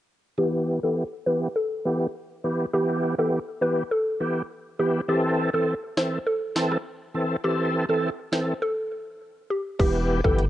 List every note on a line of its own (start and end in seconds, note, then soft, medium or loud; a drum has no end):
0.38 0.79 E3 medium
0.38 0.80 B3 medium
0.38 0.50 G4 medium
0.38 0.80 G4 medium
0.83 1.04 E3 medium
0.83 1.04 B3 medium
0.83 1.04 G4 medium
0.83 0.93 A4 medium
1.26 1.48 E3 medium
1.26 1.48 B3 medium
1.26 1.48 G4 medium
1.26 1.38 B4 medium
1.56 1.98 A4 loud
1.85 2.07 E3 medium
1.85 2.07 B3 medium
1.85 2.07 G4 medium
2.44 2.66 E3 medium
2.44 2.66 B3 medium
2.44 2.66 G4 medium
2.73 3.15 E3 medium
2.73 3.15 B3 medium
2.73 2.95 G4 loud
2.73 3.15 G4 loud
3.18 3.39 E3 medium
3.18 3.39 B3 medium
3.18 3.39 G4 medium
3.18 3.29 A4 medium
3.61 3.83 E3 medium
3.61 3.83 B3 medium
3.61 3.84 G4 medium
3.61 3.73 B4 medium
3.91 4.34 A4 medium
4.20 4.42 E3 medium
4.20 4.42 B3 medium
4.20 4.42 G4 medium
4.79 5.01 E3 medium
4.79 5.01 B3 medium
4.79 4.91 G4 medium
4.79 5.01 G4 medium
5.08 5.50 E3 medium
5.08 5.50 C4 medium
5.08 5.20 G4 medium
5.08 5.50 A4 loud
5.53 5.74 E3 medium
5.53 5.75 C4 medium
5.53 5.64 A4 medium
5.53 5.75 A4 medium
5.97 6.19 E3 medium
5.97 6.19 C4 medium
5.97 6.19 A4 medium
5.97 6.09 C5 medium
5.97 snare loud
6.27 6.69 A4 medium
6.56 6.77 E3 medium
6.56 6.78 C4 medium
6.56 6.78 A4 medium
6.56 snare loud
6.72 cross-stick medium
7.14 7.36 E3 medium
7.14 7.36 C4 medium
7.14 7.37 A4 medium
7.44 7.85 E3 medium
7.44 7.85 C4 medium
7.44 7.66 G4 loud
7.44 7.86 A4 loud
7.89 8.10 E3 medium
7.89 8.10 C4 medium
7.89 8.10 A4 medium
7.89 8.00 A4 medium
8.32 8.54 E3 medium
8.32 8.54 C4 medium
8.32 8.54 A4 medium
8.32 8.44 C5 medium
8.32 snare loud
8.62 9.04 A4 loud
9.50 9.62 G4 medium
9.79 10.21 E1 loud
9.79 10.21 E3 medium
9.79 10.21 B3 medium
9.79 10.21 G4 loud
9.79 9.91 G4 loud
9.79 kick loud
9.79 closed hi-hat medium
9.79 crash loud
10.24 10.50 G1 loud
10.24 10.45 E3 medium
10.24 10.45 B3 medium
10.24 10.45 G4 medium
10.24 10.35 A4 medium
10.24 kick medium
10.38 closed hi-hat medium